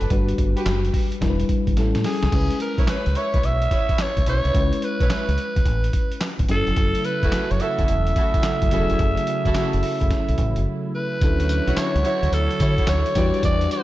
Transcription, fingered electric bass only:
0.01 F#1
0.11 G1
0.38 G1
0.66 F#1
1.21 E1
1.49 muted fingered electric bass stroke
1.67 G1
1.77 A1
1.95 A2
2.23 C2
2.32 C#2
2.78 B1
3.06 C#2
3.34 B1
3.43 B1
4.17 C#2
4.27 B1
4.45 C2
4.55 C#2
5.01 B1
5.28 C#2
5.57 C#2
5.66 A1
6.40 G#1
6.49 F#1
6.67 F1
6.77 F#1
7.23 E1
7.51 F#1
7.79 E1
7.89 E1
8.62 F#1
8.72 E1
8.90 F1
9.00 F#1
9.45 E1
9.74 F#1
10.01 F#1
10.29 B1
10.38 A1
10.57 F#1
11.22 D2
11.67 B1
11.95 C#2
12.23 D2
12.32 D2
12.60 D3
12.88 D2
13.16 E2
13.44 E2

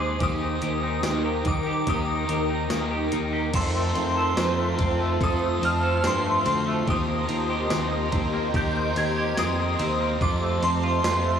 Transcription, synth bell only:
Already playing: D6
0.23 D#6
1.47 D6
1.89 D#6
3.55 C6
5.24 D#6
5.65 F6
6.07 C6
6.90 D#6
8.56 G6
8.97 G#6
9.39 D#6
10.22 D6
10.64 C6
11.05 C6

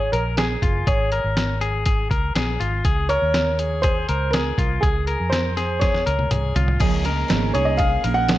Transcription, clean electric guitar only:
Already playing: G#4
0.13 A#4
0.38 G#4
0.62 F4
0.87 G#4
1.12 A#4
1.61 G#4
1.86 G#4
2.11 A#4
2.35 G#4
2.60 F4
2.85 G#4
3.10 A#4
3.59 G#4
3.84 G#4
4.09 A#4
4.34 G#4
4.58 F4
4.83 G#4
5.08 A#4
5.57 G#4
5.82 G#4
6.06 A#4
6.31 G#4
6.56 F4
6.81 G#4
7.05 A#4
7.55 G#4
7.79 G#4
8.04 A#4
8.29 G#4

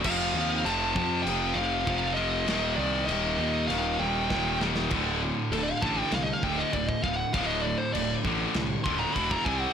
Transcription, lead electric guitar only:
0.06 F5
0.65 A5
1.23 G5
1.54 F5
2.14 D#5
2.76 D5
3.05 D#5
3.68 F5
4.00 G5
5.52 A4
5.63 D5
5.72 F5
5.82 A5
5.99 G5
6.12 F5
6.24 D#5
6.33 F5
6.44 G5
6.58 D#5
6.75 D5
6.88 D#5
7.03 F5
7.16 F#5
7.33 F5
7.47 D#5
7.63 D5
7.78 C5
7.93 D5
8.84 C6
9.00 A#5
9.14 B5
9.31 A#5
9.45 G#5
9.60 F#5

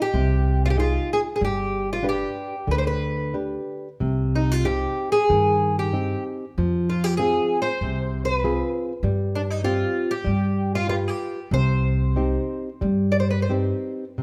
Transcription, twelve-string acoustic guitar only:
0.02 G4
0.66 F4
0.70 G4
0.80 F4
1.13 G#4
1.36 G#4
1.45 G4
1.93 F4
2.09 G4
2.71 B4
2.78 C5
2.87 B4
4.35 D#4
4.52 F4
4.65 G4
5.12 G#4
5.79 G4
6.90 F4
7.04 G4
7.17 G#4
7.62 C5
8.25 B4
9.35 D4
9.50 D#4
9.64 F4
10.11 G4
10.75 F4
10.89 F4
11.08 G4
11.54 C5
13.12 D5
13.20 C5
13.30 B4
13.42 C5

